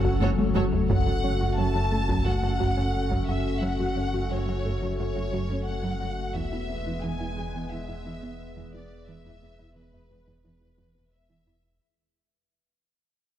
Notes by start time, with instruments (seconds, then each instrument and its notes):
Already playing: sub bass F#1, ambient pad F#3 C#4 F#4 A4, violin section F#5
0.05 synth arpeggio sound F#3, taiko
0.21 double bass section F#1, cello section F#2, viola section F#3 F#4, synth arpeggio sound C#4, violin section A4 C#5, taiko high
0.38 synth arpeggio sound A3, taiko high
0.55 double bass section F#1, cello section F#2, viola section F#3 F#4, synth arpeggio sound F#3, violin section A4 C#5, taiko high
0.72 synth arpeggio sound A3, taiko low
0.89 sub bass F#1, cello section F#2, synth arpeggio sound F#3, ambient pad A3 C#4 F#4 A4, violin section F#5, taiko
1.07 cello section F#2, synth arpeggio sound F#4
1.24 cello section F#2, synth arpeggio sound C#4
1.41 cello section F#2, synth arpeggio sound F#4
1.58 cello section F#2, synth arpeggio sound F#3, violin section A5
1.75 cello section F#2, synth arpeggio sound F#4
1.92 cello section F#2, synth arpeggio sound A3
2.09 cello section F#2, synth arpeggio sound F#3, taiko
2.26 cello section F#2, synth arpeggio sound F#4, violin section F#5
2.43 cello section F#2, synth arpeggio sound F#4
2.60 cello section F#2, synth arpeggio sound F#3, taiko
2.77 cello section F#2, synth arpeggio sound C#4
3.10 cello section F#2, synth arpeggio sound F#3, taiko
3.28 cello section F#2, synth arpeggio sound F#4, violin section E5
3.62 cello section F#2, synth arpeggio sound F#3, violin section F#5
3.79 cello section F#2, synth arpeggio sound F#4
3.96 cello section F#2, synth arpeggio sound C#4
4.12 cello section F#2, synth arpeggio sound F#4
4.30 cello section F#2, synth arpeggio sound F#3, violin section C#5
4.47 cello section F#2, synth arpeggio sound F#4
4.64 cello section F#2, synth arpeggio sound A3
4.81 cello section F#2, synth arpeggio sound F#3
4.98 cello section F#2, synth arpeggio sound F#4, violin section C#5
5.15 cello section F#2, synth arpeggio sound F#4
5.32 cello section F#2, synth arpeggio sound F#3
5.49 cello section F#2, synth arpeggio sound C#4
5.66 violin section F#5
5.83 cello section F#2, synth arpeggio sound F#3
6.01 cello section F#2, synth arpeggio sound F#4
6.34 sub bass E1, cello section E2, synth arpeggio sound E3, ambient pad G#3 B3 G#4 B4, violin section E5, taiko
6.51 cello section E2, synth arpeggio sound E4
6.69 cello section E2, synth arpeggio sound B3
6.85 cello section E2, synth arpeggio sound E4
7.03 cello section E2, synth arpeggio sound E3, violin section G#5
7.20 cello section E2, synth arpeggio sound E4
7.37 cello section E2, synth arpeggio sound G#3
7.54 cello section E2, synth arpeggio sound E3
7.71 cello section E2, synth arpeggio sound E4, violin section E5
7.88 cello section E2, synth arpeggio sound E4
8.05 cello section E2, synth arpeggio sound E3
8.22 cello section E2, synth arpeggio sound B3
8.56 cello section E2, synth arpeggio sound E3
8.74 cello section E2, synth arpeggio sound E4, violin section D5
9.08 cello section E2, synth arpeggio sound E3, violin section E5
9.25 cello section E2, synth arpeggio sound E4
9.42 cello section E2, synth arpeggio sound B3
9.59 cello section E2, synth arpeggio sound E4
9.76 cello section E2, synth arpeggio sound E3, violin section B4
9.93 cello section E2, synth arpeggio sound E4
10.11 cello section E2, synth arpeggio sound G#3
10.27 cello section E2, synth arpeggio sound E3
10.44 cello section E2, synth arpeggio sound E4, violin section B4
10.61 cello section E2, synth arpeggio sound E4
10.78 cello section E2, synth arpeggio sound E3
10.95 cello section E2, synth arpeggio sound B3
11.13 violin section E5
11.30 cello section E2, synth arpeggio sound E3
11.47 cello section E2, synth arpeggio sound E4